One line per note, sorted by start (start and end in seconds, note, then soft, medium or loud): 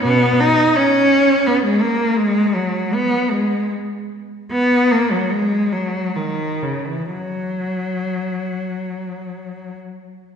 0.03 0.37 B2 medium
0.03 0.39 B3 loud
0.40 0.76 D#4 loud
0.76 1.46 C#4 loud
1.46 1.64 B3 medium
1.64 1.81 G#3 medium
1.81 2.18 A#3 medium
2.16 2.55 G#3 medium
2.55 2.93 F#3 medium
2.94 3.32 B3 loud
3.31 3.71 G#3 medium
4.51 4.89 B3 medium
4.91 5.11 A#3 medium
5.11 5.31 F#3 medium
5.30 5.72 G#3 medium
5.72 6.16 F#3 medium
6.16 6.62 D#3 medium
6.63 6.87 C#3 medium
6.86 7.11 E3 medium
7.11 9.76 F#3 medium